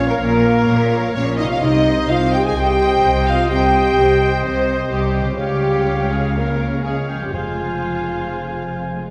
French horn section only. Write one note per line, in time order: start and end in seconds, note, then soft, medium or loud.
0.08 0.17 A#3 medium
0.18 1.12 A#3 loud
1.15 1.38 C#4 medium
1.38 1.44 D#4 medium
1.50 1.62 F4 medium
1.62 2.08 D#4 medium
2.10 2.33 F4 medium
2.35 2.45 G4 medium
2.44 2.56 G#4 medium
2.55 3.26 G4 loud
3.27 3.50 F4 medium
3.50 4.29 G4 medium
4.46 4.92 C4 medium
4.94 5.39 G3 medium
5.40 6.10 G3 medium
6.11 6.35 G#3 medium
6.36 6.84 A#3 medium
6.85 7.08 G#3 soft
7.10 7.21 G#3 soft
7.21 7.33 G3 soft
7.32 9.04 F3 soft